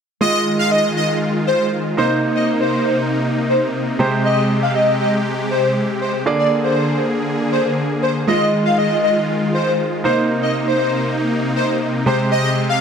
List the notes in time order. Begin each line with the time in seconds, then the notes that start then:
0.21 D#3 G#3 F4 D#5
0.59 F5
0.71 D#5
0.97 D#5
1.47 C5
1.97 C3 A#3 D#4 C5
2.35 D#5
2.61 C5
3.49 C5
3.99 C3 G#3 G4 C5
4.25 D#5
4.63 F5
4.75 D#5
5.00 D#5
5.51 C5
6.01 C5
6.26 D3 A#3 G#4 D5
6.39 D5
6.64 C5
7.52 C5
8.02 C5
8.27 D#3 G#3 F4 D#5
8.66 F5
8.78 D#5
9.04 D#5
9.54 C5
10.04 C3 A#3 D#4 C5
10.43 D#5
10.68 C5
11.56 C5
12.06 C3 G#3 G4 C5
12.32 D#5
12.69 F5